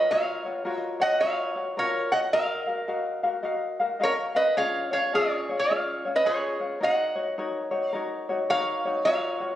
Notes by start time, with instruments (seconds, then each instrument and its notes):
Already playing: ukulele F4 F#4 C#5, resonator guitar played with a steel bar B4 D#5
0.11 ukulele F4 F#4 A#4 C#5, resonator guitar played with a steel bar C#5 F5
0.45 ukulele F4 F#4 C#5
0.65 ukulele F4 F#4 A#4 C#5
0.78 resonator guitar played with a steel bar D#5
1.00 ukulele F4 F#4 C#5, resonator guitar played with a steel bar D#5 F#5
1.20 ukulele F4 F#4 A#4 C#5, resonator guitar played with a steel bar C#5 F5
1.56 ukulele F4 F#4 C#5
1.77 ukulele F4 F#4 A#4 C#5, resonator guitar played with a steel bar A#4 C#5
2.12 ukulele F4 F#4 C#5, resonator guitar played with a steel bar D#5 F#5
2.33 ukulele F#4 A#4 D#5 F5, resonator guitar played with a steel bar A#4 F5
2.67 ukulele F#4 A#4 F5
2.88 ukulele F#4 A#4 D#5 F5
3.23 ukulele F#4 A#4 F5
3.43 ukulele F#4 A#4 D#5 F5
3.80 ukulele F#4 A#4 F5
4.00 ukulele F#4 A#4 D#5 F5, resonator guitar played with a steel bar C#5
4.05 resonator guitar played with a steel bar A#4
4.35 ukulele F#4 A#4 F5, resonator guitar played with a steel bar B4 D#5
4.57 ukulele C#4 F4 G#4 C#5, resonator guitar played with a steel bar C#5 F5
4.91 ukulele C#4 F4 C#5, resonator guitar played with a steel bar C#5 F5
5.14 ukulele C#4 F4 G#4 C#5, resonator guitar played with a steel bar G#4 C#5
5.49 ukulele C#4 F4 C#5
5.59 resonator guitar played with a steel bar C#5 F5
5.70 ukulele C#4 F4 G#4 C#5
6.05 ukulele C#4 F4 C#5
6.16 resonator guitar played with a steel bar B4 D#5
6.25 ukulele C#4 F4 G#4 C#5, resonator guitar played with a steel bar G#4 C#5
6.60 ukulele C#4 F4 C#5
6.80 ukulele D#4 F#4 A#4 C#5, resonator guitar played with a steel bar D#5 F#5
7.15 ukulele D#4 F#4 C#5
7.38 ukulele D#4 F#4 A#4 C#5
7.71 ukulele D#4 F#4 C#5
7.88 resonator guitar played with a steel bar F5
7.93 ukulele D#4 F#4 A#4 C#5
8.29 ukulele D#4 F#4 C#5
8.50 ukulele D#4 F#4 A#4 C#5, resonator guitar played with a steel bar C#5 F5
8.85 ukulele D#4 F#4 C#5
9.05 ukulele F4 F#4 A#4 C#5, resonator guitar played with a steel bar C#5 F5
9.40 ukulele F4 F#4 C#5